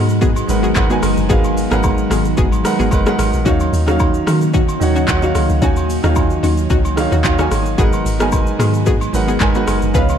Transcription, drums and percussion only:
0.09 shaker medium
0.21 kick loud
0.21 shaker medium
0.36 high agogo medium
0.36 shaker medium
0.49 open hi-hat medium
0.49 shaker loud
0.64 shaker medium
0.75 kick medium
0.75 clap medium
0.75 high agogo medium
0.75 shaker medium
0.90 shaker medium
1.03 cross-stick medium
1.03 open hi-hat medium
1.03 high agogo medium
1.03 shaker medium
1.17 shaker medium
1.30 kick loud
1.30 shaker medium
1.44 high agogo medium
1.44 shaker medium
1.57 open hi-hat medium
1.57 shaker medium
1.71 cross-stick loud
1.71 shaker medium
1.83 kick loud
1.83 high agogo medium
1.83 low woodblock medium
1.83 shaker medium
1.98 shaker soft
2.11 cross-stick loud
2.11 open hi-hat medium
2.11 high agogo medium
2.11 shaker medium
2.25 shaker medium
2.37 kick loud
2.37 shaker medium
2.52 high agogo medium
2.52 shaker medium
2.65 cross-stick loud
2.65 open hi-hat medium
2.65 shaker loud
2.80 shaker medium
2.91 kick loud
2.91 high agogo medium
2.91 shaker medium
3.06 cross-stick loud
3.06 shaker medium
3.19 cross-stick loud
3.19 open hi-hat medium
3.19 high agogo medium
3.19 shaker medium
3.33 shaker medium
3.46 kick loud
3.46 shaker medium
3.60 high agogo medium
3.60 shaker medium
3.74 open hi-hat medium
3.74 shaker loud
3.88 cross-stick loud
3.88 shaker medium
3.99 kick medium
3.99 high agogo medium
3.99 low woodblock medium
3.99 shaker medium
4.14 shaker soft
4.27 cross-stick loud
4.27 open hi-hat medium
4.27 high agogo medium
4.27 shaker medium
4.41 shaker medium
4.54 kick loud
4.54 shaker medium
4.69 high agogo medium
4.69 shaker medium
4.81 open hi-hat medium
4.81 shaker loud
4.96 shaker medium
5.07 kick medium
5.07 clap medium
5.07 high agogo medium
5.07 shaker loud
5.22 shaker medium
5.35 cross-stick medium
5.35 open hi-hat medium
5.35 high agogo medium
5.35 shaker medium
5.49 shaker medium
5.62 kick loud
5.62 shaker medium
5.76 high agogo medium
5.76 shaker medium
5.90 open hi-hat medium
5.90 shaker loud
6.04 cross-stick loud
6.04 shaker medium
6.15 kick loud
6.15 high agogo medium
6.15 low woodblock medium
6.15 shaker medium
6.30 shaker soft
6.43 open hi-hat medium
6.43 high agogo medium
6.43 shaker medium
6.58 shaker medium
6.70 kick loud
6.70 shaker medium
6.85 high agogo medium
6.85 shaker medium
6.97 cross-stick loud
6.97 open hi-hat medium
6.97 shaker loud
7.12 shaker medium
7.24 kick medium
7.24 clap loud
7.24 high agogo medium
7.24 shaker loud
7.39 cross-stick loud
7.39 shaker medium
7.51 cross-stick medium
7.51 open hi-hat medium
7.51 high agogo medium
7.51 shaker medium
7.66 shaker medium
7.78 kick loud
7.78 shaker medium
7.93 high agogo medium
7.93 shaker medium
8.06 open hi-hat medium
8.06 shaker medium
8.20 cross-stick loud
8.20 shaker medium
8.32 kick loud
8.32 high agogo medium
8.32 low woodblock medium
8.32 shaker medium
8.47 shaker soft
8.60 cross-stick loud
8.60 open hi-hat medium
8.60 high agogo medium
8.60 shaker medium
8.74 shaker medium
8.86 kick loud
8.86 shaker medium
9.01 high agogo medium
9.01 shaker medium
9.14 open hi-hat medium
9.14 shaker medium
9.29 shaker medium
9.40 kick medium
9.40 clap loud
9.40 high agogo medium
9.40 shaker medium
9.55 shaker medium
9.68 cross-stick medium
9.68 open hi-hat medium
9.68 high agogo medium
9.68 shaker medium
9.82 shaker medium
9.94 kick loud
9.94 shaker medium
10.09 high agogo medium
10.09 shaker medium

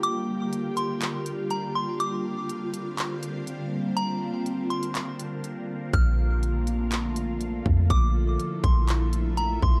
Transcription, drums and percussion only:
0.03 closed hi-hat medium
0.53 closed hi-hat medium
0.77 closed hi-hat medium
1.02 clap loud
1.02 closed hi-hat medium
1.26 closed hi-hat medium
1.50 closed hi-hat medium
2.00 closed hi-hat medium
2.49 closed hi-hat medium
2.74 closed hi-hat medium
2.98 clap loud
2.98 closed hi-hat medium
3.23 closed hi-hat medium
3.47 closed hi-hat medium
3.97 closed hi-hat medium
4.46 closed hi-hat medium
4.70 closed hi-hat soft
4.70 open hi-hat medium
4.83 closed hi-hat medium
4.95 clap loud
4.95 closed hi-hat medium
5.19 closed hi-hat medium
5.44 closed hi-hat medium
5.93 kick loud
5.93 closed hi-hat medium
6.43 closed hi-hat medium
6.67 closed hi-hat medium
6.92 clap loud
6.92 closed hi-hat medium
7.16 closed hi-hat medium
7.41 closed hi-hat medium
7.66 kick medium
7.90 kick loud
7.90 closed hi-hat medium
8.40 closed hi-hat medium
8.64 kick loud
8.64 closed hi-hat medium
8.88 clap loud
8.88 closed hi-hat medium
9.13 closed hi-hat medium
9.37 closed hi-hat medium
9.62 kick medium

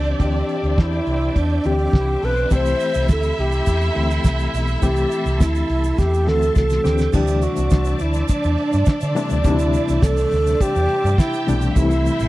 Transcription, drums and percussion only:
0.05 closed hi-hat medium
0.20 kick loud
0.20 closed hi-hat medium
0.35 closed hi-hat soft
0.49 closed hi-hat medium
0.64 closed hi-hat soft
0.78 kick loud
0.78 snare loud
0.92 closed hi-hat soft
1.07 closed hi-hat medium
1.21 closed hi-hat soft
1.36 kick loud
1.36 closed hi-hat medium
1.50 closed hi-hat soft
1.64 closed hi-hat medium
1.79 closed hi-hat medium
1.93 kick loud
1.93 snare loud
2.08 closed hi-hat soft
2.23 open hi-hat medium
2.37 closed hi-hat medium
2.50 kick loud
2.50 closed hi-hat medium
2.50 shaker medium
2.65 closed hi-hat soft
2.65 shaker medium
2.80 closed hi-hat medium
2.80 shaker medium
2.94 closed hi-hat soft
2.94 shaker medium
3.09 kick loud
3.09 snare loud
3.09 shaker medium
3.23 shaker soft
3.38 closed hi-hat medium
3.52 closed hi-hat soft
3.52 shaker medium
3.66 kick medium
3.66 closed hi-hat medium
3.66 shaker medium
3.81 closed hi-hat soft
3.81 shaker soft
3.95 closed hi-hat medium
4.11 closed hi-hat medium
4.11 shaker medium
4.24 kick loud
4.24 snare loud
4.24 shaker medium
4.39 shaker medium
4.54 open hi-hat medium
4.54 shaker medium
4.67 closed hi-hat medium
4.67 shaker soft
4.82 kick medium
4.82 closed hi-hat medium
4.82 shaker medium
4.96 shaker medium
5.11 closed hi-hat medium
5.11 shaker medium
5.26 closed hi-hat soft
5.26 shaker medium
5.40 kick loud
5.40 snare loud
5.40 shaker medium
5.55 shaker medium
5.69 closed hi-hat medium
5.84 closed hi-hat soft
5.84 shaker medium
5.98 kick loud
5.98 snare medium
5.98 shaker medium
6.14 shaker soft
6.28 snare medium
6.42 shaker medium
6.55 kick loud
6.55 snare medium
6.55 shaker medium
6.70 snare medium
6.70 shaker medium
6.85 snare loud
6.85 shaker medium
6.98 snare medium
6.98 shaker medium
7.13 kick loud
7.13 crash loud
7.13 shaker medium
7.27 closed hi-hat soft
7.27 shaker medium
7.42 closed hi-hat medium
7.42 shaker medium
7.56 closed hi-hat soft
7.56 shaker medium
7.70 kick loud
7.70 snare loud
7.70 shaker medium
7.84 closed hi-hat medium
7.84 shaker medium
7.99 closed hi-hat medium
7.99 shaker medium
8.14 closed hi-hat soft
8.14 shaker medium
8.28 kick loud
8.28 closed hi-hat medium
8.28 shaker medium
8.43 closed hi-hat soft
8.43 shaker medium
8.58 closed hi-hat medium
8.73 closed hi-hat medium
8.73 shaker medium
8.86 kick loud
8.86 snare loud
8.86 shaker medium
9.01 closed hi-hat soft
9.01 shaker medium
9.16 open hi-hat medium
9.16 shaker medium
9.30 closed hi-hat medium
9.30 shaker medium
9.44 kick loud
9.44 closed hi-hat medium
9.44 shaker medium
9.59 closed hi-hat medium
9.59 shaker medium
9.73 closed hi-hat medium
9.73 shaker medium
9.88 closed hi-hat soft
9.88 shaker medium
10.02 kick loud
10.02 snare loud
10.02 shaker loud
10.17 closed hi-hat medium
10.17 shaker medium
10.31 closed hi-hat medium
10.31 shaker medium
10.46 snare soft
10.46 closed hi-hat medium
10.46 shaker medium
10.61 kick loud
10.61 closed hi-hat medium
10.61 shaker medium
10.75 closed hi-hat soft
10.75 shaker soft
10.89 closed hi-hat medium
11.04 closed hi-hat medium
11.04 shaker soft
11.18 kick loud
11.18 snare loud
11.18 shaker medium
11.33 closed hi-hat soft
11.33 shaker medium
11.47 open hi-hat medium
11.47 shaker medium
11.61 closed hi-hat medium
11.61 shaker medium
11.76 kick loud
11.76 closed hi-hat medium
11.76 shaker medium
11.91 closed hi-hat medium
11.91 shaker medium
12.05 closed hi-hat medium
12.05 shaker medium
12.19 closed hi-hat soft
12.19 shaker medium

